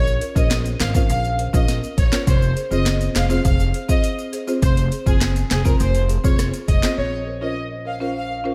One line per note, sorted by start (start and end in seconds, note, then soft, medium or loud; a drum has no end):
0.00 0.17 A#1 loud
0.07 maracas soft
0.21 0.27 A#4 medium
0.21 0.28 C#5 medium
0.21 closed hi-hat medium
0.21 maracas soft
0.35 0.73 A#1 loud
0.35 0.48 C#4 medium
0.35 0.48 F4 medium
0.35 0.48 A#4 medium
0.35 0.48 C5 medium
0.35 0.48 D#5 medium
0.35 kick medium
0.35 maracas medium
0.51 snare loud
0.51 clap loud
0.51 closed hi-hat medium
0.51 maracas medium
0.66 closed hi-hat soft
0.66 maracas medium
0.80 1.05 G#1 medium
0.80 0.86 A#4 medium
0.80 0.86 C5 medium
0.80 0.92 F5 medium
0.80 snare loud
0.80 clap loud
0.80 closed hi-hat medium
0.80 maracas medium
0.94 1.06 C#4 medium
0.94 1.07 F4 medium
0.94 1.07 A#4 medium
0.94 1.07 C5 medium
0.94 1.07 F5 medium
0.94 kick loud
0.94 maracas medium
1.09 1.47 A#1 loud
1.09 1.22 F5 medium
1.09 closed hi-hat medium
1.09 maracas medium
1.24 maracas medium
1.38 1.45 A#4 medium
1.38 1.45 C5 medium
1.38 closed hi-hat medium
1.53 1.79 A#1 loud
1.53 1.65 C#4 medium
1.53 1.65 F4 medium
1.53 1.66 A#4 medium
1.53 1.66 C5 medium
1.53 1.66 D#5 medium
1.53 kick medium
1.53 maracas medium
1.68 snare medium
1.68 closed hi-hat medium
1.68 maracas medium
1.83 maracas medium
1.97 2.10 A#1 medium
1.97 2.03 A#4 medium
1.97 2.04 C5 medium
1.97 2.10 C#5 medium
1.97 kick loud
1.97 closed hi-hat medium
1.97 maracas medium
2.12 2.24 C#4 medium
2.12 2.24 F4 medium
2.12 2.24 A#4 medium
2.12 2.25 C5 medium
2.12 snare loud
2.12 clap loud
2.12 maracas medium
2.27 2.52 F1 loud
2.27 2.40 C5 loud
2.27 kick loud
2.27 closed hi-hat medium
2.27 maracas medium
2.42 maracas soft
2.56 2.62 G#4 medium
2.56 2.63 C5 medium
2.56 closed hi-hat medium
2.56 maracas soft
2.71 3.09 F#1 medium
2.71 2.83 C4 medium
2.71 2.83 F4 medium
2.71 2.83 G#4 medium
2.71 2.83 C5 medium
2.71 2.84 D#5 medium
2.71 maracas medium
2.86 snare loud
2.86 clap loud
2.86 closed hi-hat medium
2.86 maracas medium
3.01 closed hi-hat soft
3.01 maracas medium
3.15 3.40 F1 loud
3.15 3.21 G#4 medium
3.15 3.22 C5 medium
3.15 3.28 F5 medium
3.15 snare loud
3.15 clap loud
3.15 closed hi-hat medium
3.15 maracas soft
3.30 3.42 C4 medium
3.30 3.42 F4 medium
3.30 3.42 G#4 medium
3.30 3.42 C5 medium
3.30 3.42 F5 medium
3.30 maracas medium
3.45 3.70 F1 loud
3.45 3.57 F5 medium
3.45 kick loud
3.45 closed hi-hat medium
3.45 maracas medium
3.60 maracas medium
3.74 3.80 G#4 medium
3.74 3.81 C5 medium
3.74 closed hi-hat medium
3.88 4.01 C4 medium
3.88 4.01 F4 medium
3.88 4.01 G#4 medium
3.88 4.01 C5 medium
3.88 4.01 D#5 medium
3.88 kick medium
3.88 maracas medium
4.03 closed hi-hat medium
4.03 maracas medium
4.19 maracas medium
4.33 4.39 G#4 medium
4.33 4.39 C5 loud
4.33 closed hi-hat medium
4.33 maracas medium
4.47 4.59 C4 medium
4.47 4.60 F4 medium
4.47 4.60 G#4 medium
4.47 4.60 C5 medium
4.47 maracas medium
4.62 4.87 F1 loud
4.62 4.75 C5 loud
4.62 kick loud
4.62 closed hi-hat medium
4.62 maracas medium
4.77 closed hi-hat medium
4.77 maracas soft
4.91 4.98 G#4 medium
4.91 4.98 C5 medium
4.91 closed hi-hat medium
4.91 maracas medium
5.06 5.44 F#1 medium
5.06 5.18 C4 medium
5.06 5.18 F4 medium
5.06 5.19 G#4 medium
5.06 5.19 C5 medium
5.06 kick medium
5.06 maracas medium
5.21 snare loud
5.21 clap loud
5.21 closed hi-hat medium
5.21 maracas medium
5.36 closed hi-hat soft
5.36 maracas medium
5.50 5.76 F1 loud
5.50 5.56 G#4 medium
5.50 5.63 G#4 medium
5.50 5.57 C5 medium
5.50 snare loud
5.50 clap medium
5.50 closed hi-hat medium
5.65 5.77 C4 medium
5.65 5.77 F4 medium
5.65 5.77 G#4 medium
5.65 5.78 A#4 medium
5.65 5.78 C5 medium
5.65 kick loud
5.65 maracas medium
5.80 6.18 F1 loud
5.80 5.92 C5 medium
5.80 closed hi-hat medium
5.80 maracas medium
5.95 closed hi-hat medium
5.95 maracas medium
6.09 6.15 G#4 medium
6.09 6.16 C5 medium
6.09 closed hi-hat medium
6.09 maracas medium
6.24 6.49 F1 loud
6.24 6.36 C4 medium
6.24 6.36 F4 medium
6.24 6.36 G#4 medium
6.24 6.36 C5 medium
6.24 6.37 C#5 medium
6.24 kick loud
6.24 maracas medium
6.39 cross-stick medium
6.39 snare medium
6.39 closed hi-hat medium
6.39 maracas medium
6.54 closed hi-hat medium
6.54 maracas medium
6.68 6.81 F1 medium
6.68 6.74 G#4 medium
6.68 6.75 C5 medium
6.68 6.81 D#5 medium
6.68 kick loud
6.68 closed hi-hat medium
6.68 maracas medium
6.82 6.95 C4 medium
6.82 6.95 F4 medium
6.82 6.95 G#4 medium
6.82 6.95 C5 medium
6.82 snare loud
6.82 clap loud
6.82 maracas medium
6.98 8.55 A#1 medium
6.98 7.10 C#5 medium
7.27 7.33 A#4 medium
7.27 7.33 C5 medium
7.41 7.53 C#4 medium
7.41 7.54 F4 medium
7.41 7.54 A#4 medium
7.41 7.54 C5 medium
7.41 7.54 D#5 medium
7.85 7.92 A#4 medium
7.85 7.92 C5 medium
7.85 7.98 F5 medium
8.00 8.12 C#4 medium
8.00 8.12 F4 medium
8.00 8.13 A#4 medium
8.00 8.13 C5 medium
8.00 8.13 F5 medium
8.16 8.28 F5 medium
8.44 8.55 C#4 medium
8.44 8.55 F4 medium
8.44 8.55 A#4 medium
8.44 8.55 C5 medium